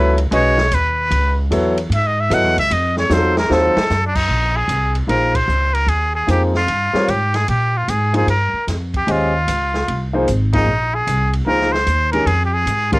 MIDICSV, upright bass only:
0, 0, Header, 1, 3, 480
1, 0, Start_track
1, 0, Tempo, 398142
1, 1343, Time_signature, 4, 2, 24, 8
1, 15666, End_track
2, 0, Start_track
2, 0, Title_t, "Upright bass"
2, 0, Program_c, 0, 32
2, 0, Note_on_c, 0, 37, 93
2, 367, Note_off_c, 0, 37, 0
2, 376, Note_on_c, 0, 35, 75
2, 845, Note_off_c, 0, 35, 0
2, 861, Note_on_c, 0, 39, 90
2, 1327, Note_off_c, 0, 39, 0
2, 1332, Note_on_c, 0, 37, 99
2, 1802, Note_off_c, 0, 37, 0
2, 1813, Note_on_c, 0, 40, 81
2, 2279, Note_off_c, 0, 40, 0
2, 2286, Note_on_c, 0, 44, 94
2, 2758, Note_off_c, 0, 44, 0
2, 2772, Note_on_c, 0, 42, 105
2, 2938, Note_off_c, 0, 42, 0
2, 2938, Note_on_c, 0, 40, 62
2, 3091, Note_off_c, 0, 40, 0
2, 3099, Note_on_c, 0, 37, 80
2, 3248, Note_off_c, 0, 37, 0
2, 3261, Note_on_c, 0, 41, 96
2, 3725, Note_off_c, 0, 41, 0
2, 3731, Note_on_c, 0, 40, 99
2, 4200, Note_off_c, 0, 40, 0
2, 4217, Note_on_c, 0, 39, 82
2, 4506, Note_off_c, 0, 39, 0
2, 4702, Note_on_c, 0, 42, 93
2, 5161, Note_off_c, 0, 42, 0
2, 5168, Note_on_c, 0, 34, 76
2, 5633, Note_off_c, 0, 34, 0
2, 5641, Note_on_c, 0, 36, 85
2, 6108, Note_off_c, 0, 36, 0
2, 6115, Note_on_c, 0, 34, 78
2, 6591, Note_off_c, 0, 34, 0
2, 6604, Note_on_c, 0, 37, 87
2, 7066, Note_off_c, 0, 37, 0
2, 7073, Note_on_c, 0, 39, 81
2, 7551, Note_off_c, 0, 39, 0
2, 7571, Note_on_c, 0, 41, 91
2, 8040, Note_off_c, 0, 41, 0
2, 8052, Note_on_c, 0, 43, 75
2, 8344, Note_off_c, 0, 43, 0
2, 8541, Note_on_c, 0, 44, 85
2, 9005, Note_off_c, 0, 44, 0
2, 9020, Note_on_c, 0, 46, 92
2, 9485, Note_off_c, 0, 46, 0
2, 9497, Note_on_c, 0, 44, 82
2, 9961, Note_off_c, 0, 44, 0
2, 9968, Note_on_c, 0, 43, 72
2, 10263, Note_off_c, 0, 43, 0
2, 10457, Note_on_c, 0, 41, 83
2, 10924, Note_off_c, 0, 41, 0
2, 10936, Note_on_c, 0, 39, 86
2, 11404, Note_off_c, 0, 39, 0
2, 11425, Note_on_c, 0, 37, 81
2, 11889, Note_off_c, 0, 37, 0
2, 11911, Note_on_c, 0, 36, 69
2, 12372, Note_off_c, 0, 36, 0
2, 12385, Note_on_c, 0, 32, 85
2, 12849, Note_off_c, 0, 32, 0
2, 12857, Note_on_c, 0, 34, 80
2, 13325, Note_off_c, 0, 34, 0
2, 13343, Note_on_c, 0, 36, 89
2, 13808, Note_off_c, 0, 36, 0
2, 13822, Note_on_c, 0, 37, 73
2, 14288, Note_off_c, 0, 37, 0
2, 14302, Note_on_c, 0, 39, 91
2, 14768, Note_off_c, 0, 39, 0
2, 14778, Note_on_c, 0, 41, 80
2, 15246, Note_off_c, 0, 41, 0
2, 15263, Note_on_c, 0, 44, 80
2, 15666, Note_off_c, 0, 44, 0
2, 15666, End_track
3, 0, Start_track
3, 0, Title_t, "Muted upright bass strokes"
3, 4535, Note_on_c, 9, 29, 45
3, 4656, Note_off_c, 9, 29, 0
3, 8361, Note_on_c, 9, 29, 40
3, 8481, Note_off_c, 9, 29, 0
3, 10288, Note_on_c, 9, 29, 41
3, 10408, Note_off_c, 9, 29, 0
3, 15666, End_track
0, 0, End_of_file